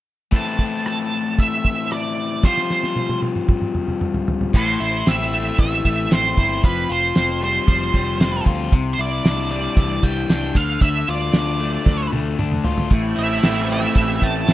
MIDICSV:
0, 0, Header, 1, 6, 480
1, 0, Start_track
1, 0, Key_signature, 0, "minor"
1, 0, Tempo, 524476
1, 308, Time_signature, 4, 2, 24, 8
1, 13302, End_track
2, 0, Start_track
2, 0, Title_t, "Lead electric guitar"
2, 0, Program_c, 0, 29
2, 331, Note_on_c, 0, 81, 86
2, 771, Note_off_c, 0, 81, 0
2, 802, Note_on_c, 0, 81, 87
2, 1279, Note_on_c, 0, 76, 87
2, 1295, Note_off_c, 0, 81, 0
2, 1756, Note_off_c, 0, 76, 0
2, 1760, Note_on_c, 0, 74, 77
2, 2240, Note_on_c, 0, 72, 72
2, 2256, Note_off_c, 0, 74, 0
2, 2926, Note_off_c, 0, 72, 0
2, 4181, Note_on_c, 0, 72, 81
2, 4652, Note_on_c, 0, 76, 95
2, 4665, Note_off_c, 0, 72, 0
2, 5119, Note_off_c, 0, 76, 0
2, 5130, Note_on_c, 0, 76, 92
2, 5612, Note_on_c, 0, 72, 85
2, 5618, Note_off_c, 0, 76, 0
2, 6085, Note_off_c, 0, 72, 0
2, 6088, Note_on_c, 0, 71, 80
2, 6329, Note_off_c, 0, 71, 0
2, 6334, Note_on_c, 0, 72, 84
2, 6770, Note_off_c, 0, 72, 0
2, 6807, Note_on_c, 0, 72, 77
2, 7718, Note_off_c, 0, 72, 0
2, 8177, Note_on_c, 0, 72, 62
2, 8233, Note_off_c, 0, 72, 0
2, 8245, Note_on_c, 0, 74, 85
2, 8694, Note_off_c, 0, 74, 0
2, 8705, Note_on_c, 0, 74, 83
2, 9185, Note_on_c, 0, 79, 91
2, 9196, Note_off_c, 0, 74, 0
2, 9674, Note_on_c, 0, 77, 83
2, 9675, Note_off_c, 0, 79, 0
2, 9897, Note_off_c, 0, 77, 0
2, 9901, Note_on_c, 0, 76, 85
2, 10146, Note_off_c, 0, 76, 0
2, 10162, Note_on_c, 0, 74, 73
2, 11072, Note_off_c, 0, 74, 0
2, 12069, Note_on_c, 0, 76, 79
2, 12510, Note_off_c, 0, 76, 0
2, 12562, Note_on_c, 0, 76, 82
2, 13027, Note_on_c, 0, 81, 94
2, 13046, Note_off_c, 0, 76, 0
2, 13302, Note_off_c, 0, 81, 0
2, 13302, End_track
3, 0, Start_track
3, 0, Title_t, "Overdriven electric guitar"
3, 0, Program_c, 1, 29
3, 288, Note_on_c, 1, 45, 75
3, 294, Note_on_c, 1, 52, 83
3, 304, Note_on_c, 1, 57, 83
3, 312, Note_on_c, 1, 60, 80
3, 318, Note_on_c, 1, 64, 86
3, 2216, Note_off_c, 1, 45, 0
3, 2220, Note_off_c, 1, 52, 0
3, 2224, Note_off_c, 1, 57, 0
3, 2227, Note_on_c, 1, 53, 84
3, 2232, Note_off_c, 1, 64, 0
3, 2238, Note_on_c, 1, 55, 80
3, 2241, Note_off_c, 1, 60, 0
3, 2245, Note_on_c, 1, 60, 84
3, 2259, Note_on_c, 1, 65, 85
3, 4142, Note_off_c, 1, 53, 0
3, 4148, Note_off_c, 1, 55, 0
3, 4151, Note_off_c, 1, 60, 0
3, 4158, Note_off_c, 1, 65, 0
3, 4163, Note_on_c, 1, 45, 68
3, 4395, Note_on_c, 1, 64, 70
3, 4637, Note_on_c, 1, 60, 66
3, 4882, Note_on_c, 1, 57, 66
3, 5111, Note_on_c, 1, 52, 66
3, 5345, Note_off_c, 1, 57, 0
3, 5356, Note_on_c, 1, 57, 59
3, 5360, Note_off_c, 1, 45, 0
3, 5590, Note_off_c, 1, 60, 0
3, 5593, Note_on_c, 1, 60, 63
3, 5595, Note_off_c, 1, 64, 0
3, 5836, Note_on_c, 1, 64, 70
3, 6071, Note_off_c, 1, 52, 0
3, 6075, Note_off_c, 1, 57, 0
3, 6075, Note_on_c, 1, 53, 70
3, 6076, Note_off_c, 1, 64, 0
3, 6309, Note_on_c, 1, 65, 70
3, 6549, Note_off_c, 1, 60, 0
3, 6552, Note_on_c, 1, 60, 66
3, 6785, Note_on_c, 1, 55, 63
3, 7007, Note_off_c, 1, 53, 0
3, 7018, Note_on_c, 1, 53, 68
3, 7245, Note_off_c, 1, 55, 0
3, 7256, Note_on_c, 1, 55, 60
3, 7499, Note_off_c, 1, 60, 0
3, 7506, Note_off_c, 1, 65, 0
3, 7510, Note_on_c, 1, 60, 65
3, 7748, Note_on_c, 1, 65, 67
3, 7980, Note_off_c, 1, 53, 0
3, 7980, Note_off_c, 1, 55, 0
3, 7987, Note_off_c, 1, 60, 0
3, 7987, Note_off_c, 1, 65, 0
3, 7987, Note_on_c, 1, 48, 72
3, 8228, Note_on_c, 1, 64, 72
3, 8465, Note_on_c, 1, 62, 66
3, 8705, Note_on_c, 1, 55, 60
3, 8941, Note_on_c, 1, 52, 68
3, 9173, Note_off_c, 1, 55, 0
3, 9181, Note_off_c, 1, 48, 0
3, 9184, Note_on_c, 1, 55, 58
3, 9415, Note_off_c, 1, 62, 0
3, 9421, Note_off_c, 1, 64, 0
3, 9426, Note_on_c, 1, 62, 62
3, 9656, Note_off_c, 1, 52, 0
3, 9660, Note_off_c, 1, 55, 0
3, 9660, Note_on_c, 1, 50, 67
3, 9662, Note_off_c, 1, 62, 0
3, 9891, Note_off_c, 1, 50, 0
3, 9902, Note_on_c, 1, 50, 67
3, 10143, Note_on_c, 1, 65, 70
3, 10376, Note_on_c, 1, 62, 64
3, 10617, Note_on_c, 1, 57, 61
3, 10846, Note_off_c, 1, 50, 0
3, 10857, Note_on_c, 1, 50, 64
3, 11085, Note_off_c, 1, 57, 0
3, 11096, Note_on_c, 1, 57, 60
3, 11327, Note_off_c, 1, 62, 0
3, 11338, Note_off_c, 1, 65, 0
3, 11338, Note_on_c, 1, 62, 64
3, 11574, Note_on_c, 1, 65, 66
3, 11805, Note_on_c, 1, 45, 70
3, 11815, Note_off_c, 1, 65, 0
3, 11816, Note_off_c, 1, 50, 0
3, 11816, Note_off_c, 1, 57, 0
3, 11817, Note_off_c, 1, 62, 0
3, 12042, Note_on_c, 1, 64, 72
3, 12296, Note_on_c, 1, 60, 67
3, 12534, Note_on_c, 1, 57, 61
3, 12780, Note_on_c, 1, 52, 69
3, 13007, Note_off_c, 1, 57, 0
3, 13014, Note_off_c, 1, 45, 0
3, 13018, Note_on_c, 1, 57, 63
3, 13253, Note_off_c, 1, 64, 0
3, 13262, Note_off_c, 1, 60, 0
3, 13266, Note_on_c, 1, 60, 62
3, 13302, Note_off_c, 1, 52, 0
3, 13302, Note_off_c, 1, 57, 0
3, 13302, Note_off_c, 1, 60, 0
3, 13302, End_track
4, 0, Start_track
4, 0, Title_t, "Overdriven electric guitar"
4, 0, Program_c, 2, 29
4, 11811, Note_on_c, 2, 45, 70
4, 11822, Note_on_c, 2, 52, 68
4, 11828, Note_on_c, 2, 57, 71
4, 11836, Note_on_c, 2, 60, 69
4, 11842, Note_on_c, 2, 64, 73
4, 13302, Note_off_c, 2, 45, 0
4, 13302, Note_off_c, 2, 52, 0
4, 13302, Note_off_c, 2, 57, 0
4, 13302, Note_off_c, 2, 60, 0
4, 13302, Note_off_c, 2, 64, 0
4, 13302, End_track
5, 0, Start_track
5, 0, Title_t, "Picked electric bass"
5, 0, Program_c, 3, 34
5, 4156, Note_on_c, 3, 33, 79
5, 4355, Note_off_c, 3, 33, 0
5, 4396, Note_on_c, 3, 33, 75
5, 4594, Note_off_c, 3, 33, 0
5, 4646, Note_on_c, 3, 33, 83
5, 5035, Note_off_c, 3, 33, 0
5, 5112, Note_on_c, 3, 33, 85
5, 5311, Note_off_c, 3, 33, 0
5, 5356, Note_on_c, 3, 33, 75
5, 5553, Note_off_c, 3, 33, 0
5, 5593, Note_on_c, 3, 33, 81
5, 5790, Note_off_c, 3, 33, 0
5, 5834, Note_on_c, 3, 31, 80
5, 6031, Note_off_c, 3, 31, 0
5, 6074, Note_on_c, 3, 29, 85
5, 6270, Note_off_c, 3, 29, 0
5, 6315, Note_on_c, 3, 29, 77
5, 6510, Note_off_c, 3, 29, 0
5, 6552, Note_on_c, 3, 29, 80
5, 6942, Note_off_c, 3, 29, 0
5, 7027, Note_on_c, 3, 29, 90
5, 7224, Note_off_c, 3, 29, 0
5, 7269, Note_on_c, 3, 29, 79
5, 7464, Note_off_c, 3, 29, 0
5, 7489, Note_on_c, 3, 29, 84
5, 7692, Note_off_c, 3, 29, 0
5, 7744, Note_on_c, 3, 38, 83
5, 7940, Note_off_c, 3, 38, 0
5, 7980, Note_on_c, 3, 36, 86
5, 8178, Note_off_c, 3, 36, 0
5, 8219, Note_on_c, 3, 36, 77
5, 8416, Note_off_c, 3, 36, 0
5, 8461, Note_on_c, 3, 36, 83
5, 8852, Note_off_c, 3, 36, 0
5, 8936, Note_on_c, 3, 36, 88
5, 9133, Note_off_c, 3, 36, 0
5, 9178, Note_on_c, 3, 36, 80
5, 9374, Note_off_c, 3, 36, 0
5, 9421, Note_on_c, 3, 36, 82
5, 9615, Note_off_c, 3, 36, 0
5, 9658, Note_on_c, 3, 38, 80
5, 9853, Note_off_c, 3, 38, 0
5, 9896, Note_on_c, 3, 38, 83
5, 10092, Note_off_c, 3, 38, 0
5, 10145, Note_on_c, 3, 38, 69
5, 10337, Note_off_c, 3, 38, 0
5, 10377, Note_on_c, 3, 38, 76
5, 10768, Note_off_c, 3, 38, 0
5, 10856, Note_on_c, 3, 38, 80
5, 11051, Note_off_c, 3, 38, 0
5, 11106, Note_on_c, 3, 38, 76
5, 11298, Note_off_c, 3, 38, 0
5, 11344, Note_on_c, 3, 38, 84
5, 11536, Note_off_c, 3, 38, 0
5, 11584, Note_on_c, 3, 38, 80
5, 11777, Note_off_c, 3, 38, 0
5, 11814, Note_on_c, 3, 33, 84
5, 12011, Note_off_c, 3, 33, 0
5, 12056, Note_on_c, 3, 33, 72
5, 12253, Note_off_c, 3, 33, 0
5, 12295, Note_on_c, 3, 33, 78
5, 12688, Note_off_c, 3, 33, 0
5, 12771, Note_on_c, 3, 33, 85
5, 12971, Note_off_c, 3, 33, 0
5, 13014, Note_on_c, 3, 33, 78
5, 13213, Note_off_c, 3, 33, 0
5, 13245, Note_on_c, 3, 33, 84
5, 13302, Note_off_c, 3, 33, 0
5, 13302, End_track
6, 0, Start_track
6, 0, Title_t, "Drums"
6, 293, Note_on_c, 9, 46, 62
6, 297, Note_on_c, 9, 36, 95
6, 384, Note_off_c, 9, 46, 0
6, 388, Note_off_c, 9, 36, 0
6, 538, Note_on_c, 9, 46, 41
6, 539, Note_on_c, 9, 36, 71
6, 629, Note_off_c, 9, 46, 0
6, 631, Note_off_c, 9, 36, 0
6, 782, Note_on_c, 9, 46, 61
6, 787, Note_on_c, 9, 37, 97
6, 874, Note_off_c, 9, 46, 0
6, 879, Note_off_c, 9, 37, 0
6, 1030, Note_on_c, 9, 46, 43
6, 1121, Note_off_c, 9, 46, 0
6, 1268, Note_on_c, 9, 36, 99
6, 1274, Note_on_c, 9, 46, 60
6, 1360, Note_off_c, 9, 36, 0
6, 1366, Note_off_c, 9, 46, 0
6, 1508, Note_on_c, 9, 36, 72
6, 1514, Note_on_c, 9, 46, 46
6, 1599, Note_off_c, 9, 36, 0
6, 1605, Note_off_c, 9, 46, 0
6, 1751, Note_on_c, 9, 46, 62
6, 1755, Note_on_c, 9, 37, 91
6, 1842, Note_off_c, 9, 46, 0
6, 1847, Note_off_c, 9, 37, 0
6, 1991, Note_on_c, 9, 46, 50
6, 2082, Note_off_c, 9, 46, 0
6, 2228, Note_on_c, 9, 38, 52
6, 2229, Note_on_c, 9, 36, 104
6, 2319, Note_off_c, 9, 38, 0
6, 2321, Note_off_c, 9, 36, 0
6, 2356, Note_on_c, 9, 38, 44
6, 2448, Note_off_c, 9, 38, 0
6, 2474, Note_on_c, 9, 38, 54
6, 2566, Note_off_c, 9, 38, 0
6, 2592, Note_on_c, 9, 38, 47
6, 2684, Note_off_c, 9, 38, 0
6, 2709, Note_on_c, 9, 48, 57
6, 2801, Note_off_c, 9, 48, 0
6, 2832, Note_on_c, 9, 48, 51
6, 2923, Note_off_c, 9, 48, 0
6, 2949, Note_on_c, 9, 48, 60
6, 3041, Note_off_c, 9, 48, 0
6, 3072, Note_on_c, 9, 47, 55
6, 3164, Note_off_c, 9, 47, 0
6, 3186, Note_on_c, 9, 47, 66
6, 3191, Note_on_c, 9, 36, 105
6, 3278, Note_off_c, 9, 47, 0
6, 3282, Note_off_c, 9, 36, 0
6, 3310, Note_on_c, 9, 47, 60
6, 3401, Note_off_c, 9, 47, 0
6, 3430, Note_on_c, 9, 45, 67
6, 3521, Note_off_c, 9, 45, 0
6, 3552, Note_on_c, 9, 45, 60
6, 3643, Note_off_c, 9, 45, 0
6, 3671, Note_on_c, 9, 45, 74
6, 3763, Note_off_c, 9, 45, 0
6, 3791, Note_on_c, 9, 43, 68
6, 3882, Note_off_c, 9, 43, 0
6, 3917, Note_on_c, 9, 43, 83
6, 4008, Note_off_c, 9, 43, 0
6, 4035, Note_on_c, 9, 43, 65
6, 4126, Note_off_c, 9, 43, 0
6, 4155, Note_on_c, 9, 36, 107
6, 4158, Note_on_c, 9, 49, 89
6, 4247, Note_off_c, 9, 36, 0
6, 4250, Note_off_c, 9, 49, 0
6, 4401, Note_on_c, 9, 42, 59
6, 4492, Note_off_c, 9, 42, 0
6, 4636, Note_on_c, 9, 42, 82
6, 4640, Note_on_c, 9, 38, 94
6, 4727, Note_off_c, 9, 42, 0
6, 4732, Note_off_c, 9, 38, 0
6, 4880, Note_on_c, 9, 42, 57
6, 4971, Note_off_c, 9, 42, 0
6, 5111, Note_on_c, 9, 42, 83
6, 5114, Note_on_c, 9, 36, 105
6, 5202, Note_off_c, 9, 42, 0
6, 5206, Note_off_c, 9, 36, 0
6, 5354, Note_on_c, 9, 36, 72
6, 5356, Note_on_c, 9, 42, 61
6, 5446, Note_off_c, 9, 36, 0
6, 5448, Note_off_c, 9, 42, 0
6, 5595, Note_on_c, 9, 42, 79
6, 5599, Note_on_c, 9, 38, 98
6, 5686, Note_off_c, 9, 42, 0
6, 5691, Note_off_c, 9, 38, 0
6, 5834, Note_on_c, 9, 36, 81
6, 5834, Note_on_c, 9, 42, 58
6, 5926, Note_off_c, 9, 36, 0
6, 5926, Note_off_c, 9, 42, 0
6, 6075, Note_on_c, 9, 36, 101
6, 6076, Note_on_c, 9, 42, 77
6, 6166, Note_off_c, 9, 36, 0
6, 6167, Note_off_c, 9, 42, 0
6, 6315, Note_on_c, 9, 42, 56
6, 6406, Note_off_c, 9, 42, 0
6, 6547, Note_on_c, 9, 42, 71
6, 6551, Note_on_c, 9, 38, 101
6, 6638, Note_off_c, 9, 42, 0
6, 6643, Note_off_c, 9, 38, 0
6, 6790, Note_on_c, 9, 42, 53
6, 6882, Note_off_c, 9, 42, 0
6, 7029, Note_on_c, 9, 36, 110
6, 7032, Note_on_c, 9, 42, 71
6, 7120, Note_off_c, 9, 36, 0
6, 7123, Note_off_c, 9, 42, 0
6, 7267, Note_on_c, 9, 36, 74
6, 7270, Note_on_c, 9, 42, 57
6, 7358, Note_off_c, 9, 36, 0
6, 7362, Note_off_c, 9, 42, 0
6, 7509, Note_on_c, 9, 42, 72
6, 7513, Note_on_c, 9, 38, 102
6, 7600, Note_off_c, 9, 42, 0
6, 7605, Note_off_c, 9, 38, 0
6, 7745, Note_on_c, 9, 36, 82
6, 7748, Note_on_c, 9, 42, 57
6, 7836, Note_off_c, 9, 36, 0
6, 7840, Note_off_c, 9, 42, 0
6, 7984, Note_on_c, 9, 36, 105
6, 7986, Note_on_c, 9, 42, 76
6, 8076, Note_off_c, 9, 36, 0
6, 8078, Note_off_c, 9, 42, 0
6, 8230, Note_on_c, 9, 42, 55
6, 8321, Note_off_c, 9, 42, 0
6, 8466, Note_on_c, 9, 42, 79
6, 8470, Note_on_c, 9, 38, 98
6, 8557, Note_off_c, 9, 42, 0
6, 8562, Note_off_c, 9, 38, 0
6, 8707, Note_on_c, 9, 42, 58
6, 8799, Note_off_c, 9, 42, 0
6, 8940, Note_on_c, 9, 36, 106
6, 8940, Note_on_c, 9, 42, 83
6, 9031, Note_off_c, 9, 42, 0
6, 9032, Note_off_c, 9, 36, 0
6, 9180, Note_on_c, 9, 36, 71
6, 9181, Note_on_c, 9, 42, 60
6, 9272, Note_off_c, 9, 36, 0
6, 9272, Note_off_c, 9, 42, 0
6, 9423, Note_on_c, 9, 42, 77
6, 9427, Note_on_c, 9, 38, 97
6, 9514, Note_off_c, 9, 42, 0
6, 9519, Note_off_c, 9, 38, 0
6, 9655, Note_on_c, 9, 42, 63
6, 9656, Note_on_c, 9, 36, 78
6, 9747, Note_off_c, 9, 42, 0
6, 9748, Note_off_c, 9, 36, 0
6, 9890, Note_on_c, 9, 42, 83
6, 9896, Note_on_c, 9, 36, 96
6, 9981, Note_off_c, 9, 42, 0
6, 9987, Note_off_c, 9, 36, 0
6, 10138, Note_on_c, 9, 42, 57
6, 10229, Note_off_c, 9, 42, 0
6, 10369, Note_on_c, 9, 42, 74
6, 10374, Note_on_c, 9, 38, 101
6, 10461, Note_off_c, 9, 42, 0
6, 10465, Note_off_c, 9, 38, 0
6, 10616, Note_on_c, 9, 42, 54
6, 10707, Note_off_c, 9, 42, 0
6, 10857, Note_on_c, 9, 36, 104
6, 10864, Note_on_c, 9, 38, 53
6, 10949, Note_off_c, 9, 36, 0
6, 10956, Note_off_c, 9, 38, 0
6, 11099, Note_on_c, 9, 48, 63
6, 11190, Note_off_c, 9, 48, 0
6, 11338, Note_on_c, 9, 47, 72
6, 11430, Note_off_c, 9, 47, 0
6, 11457, Note_on_c, 9, 45, 65
6, 11549, Note_off_c, 9, 45, 0
6, 11571, Note_on_c, 9, 43, 83
6, 11663, Note_off_c, 9, 43, 0
6, 11692, Note_on_c, 9, 43, 78
6, 11783, Note_off_c, 9, 43, 0
6, 11813, Note_on_c, 9, 42, 72
6, 11815, Note_on_c, 9, 36, 102
6, 11904, Note_off_c, 9, 42, 0
6, 11907, Note_off_c, 9, 36, 0
6, 12048, Note_on_c, 9, 42, 53
6, 12139, Note_off_c, 9, 42, 0
6, 12291, Note_on_c, 9, 42, 78
6, 12296, Note_on_c, 9, 38, 99
6, 12383, Note_off_c, 9, 42, 0
6, 12387, Note_off_c, 9, 38, 0
6, 12532, Note_on_c, 9, 42, 55
6, 12624, Note_off_c, 9, 42, 0
6, 12768, Note_on_c, 9, 42, 81
6, 12774, Note_on_c, 9, 36, 99
6, 12860, Note_off_c, 9, 42, 0
6, 12865, Note_off_c, 9, 36, 0
6, 13008, Note_on_c, 9, 42, 62
6, 13015, Note_on_c, 9, 36, 70
6, 13100, Note_off_c, 9, 42, 0
6, 13106, Note_off_c, 9, 36, 0
6, 13252, Note_on_c, 9, 42, 79
6, 13256, Note_on_c, 9, 38, 100
6, 13302, Note_off_c, 9, 38, 0
6, 13302, Note_off_c, 9, 42, 0
6, 13302, End_track
0, 0, End_of_file